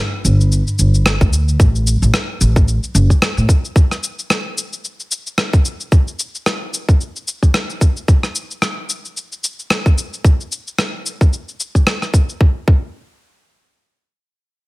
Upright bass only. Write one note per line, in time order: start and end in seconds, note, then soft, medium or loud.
0.25 0.60 G1 medium
0.79 1.15 G1 medium
1.21 1.55 D2 medium
1.60 1.96 A1 medium
2.02 2.11 A1 medium
2.41 2.77 A1 medium
2.95 3.06 F#1 medium
3.37 3.46 A2 medium